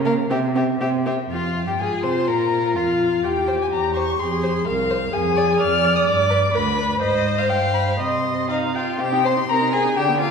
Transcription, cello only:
Already playing: C#3
0.30 C3
0.80 C3
1.30 F2
1.67 G2
1.79 G#2
2.03 C3
2.28 A#2
2.76 F2
3.23 E2
3.71 E2
4.20 F2
4.67 C2
5.13 F2
5.60 F2
6.08 G2
6.54 D2
7.01 G#2
7.50 G2
7.99 C3
9.00 C3
9.49 C3
9.97 D3

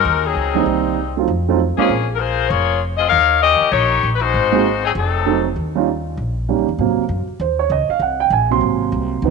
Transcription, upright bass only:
0.05 D#2
0.35 C#2
0.66 C2
1.28 F2
1.78 muted upright bass stroke
1.89 A#1
2.50 F1
3.12 D#2
3.61 muted upright bass stroke
3.72 A#1
4.03 A#1
4.34 G#1
4.95 F1
5.56 D#2
6.17 A#1
6.59 C#2
6.69 D#2
6.78 G#2
6.98 muted upright bass stroke
7.09 F#2
7.27 muted upright bass stroke
7.40 D#2
7.70 C#2
7.89 muted upright bass stroke
7.99 C2
8.30 A#1
8.61 G#1
8.92 C2
9.22 C#2

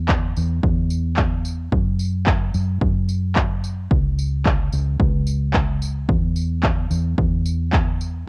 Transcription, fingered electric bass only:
Already playing: E2
0.37 E2
0.63 E2
1.72 F#2
2.54 F#2
2.81 F#2
3.91 C#2
4.73 C#2
5.00 C#2
6.09 E2
6.91 E2
7.18 E2

